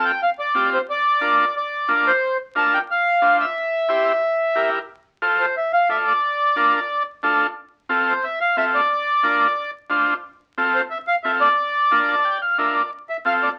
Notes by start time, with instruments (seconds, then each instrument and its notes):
Already playing: transistor combo organ C4 F4 A4
0.05 accordion G5
0.23 accordion F5
0.39 accordion D5
0.55 transistor combo organ C4 F4 G4
0.74 accordion C5
0.90 accordion D5
1.21 transistor combo organ D4 F4 A#4
1.56 accordion D5
1.88 transistor combo organ D4 F4 A#4
2.07 accordion C5
2.55 transistor combo organ D4 F4 A#4, accordion A5
2.74 accordion G5
2.91 accordion F5
3.22 transistor combo organ D4 F4 C5
3.41 accordion E5
3.89 transistor combo organ E4 G4 C5
4.55 transistor combo organ E4 G4 A#4
5.22 transistor combo organ F4 A4 C5
5.40 accordion C5
5.57 accordion E5
5.73 accordion F5
5.89 transistor combo organ F4 A4 D5, accordion E5
6.07 accordion D5
6.56 transistor combo organ D4 F4 A#4
7.23 transistor combo organ D4 F4 A4
7.89 transistor combo organ C4 F4 A4
8.08 accordion C5
8.24 accordion E5
8.41 accordion F5
8.57 transistor combo organ C4 F4 A4, accordion E5
8.75 accordion D5
9.23 transistor combo organ D4 F4 A#4
9.90 transistor combo organ D4 F4 C5
10.58 transistor combo organ C4 F4 A4
10.75 accordion C5
10.90 accordion E5
11.08 accordion F5
11.24 transistor combo organ C4 F4 A4, accordion E5
11.41 accordion D5
11.91 transistor combo organ D4 F4 A#4
12.09 transistor combo organ A5
12.25 transistor combo organ G5
12.42 transistor combo organ F5
12.58 transistor combo organ D4 F4 A#4 E5
12.75 transistor combo organ D5
13.10 accordion E5
13.25 transistor combo organ C4 F4 A4, accordion F5
13.43 accordion D5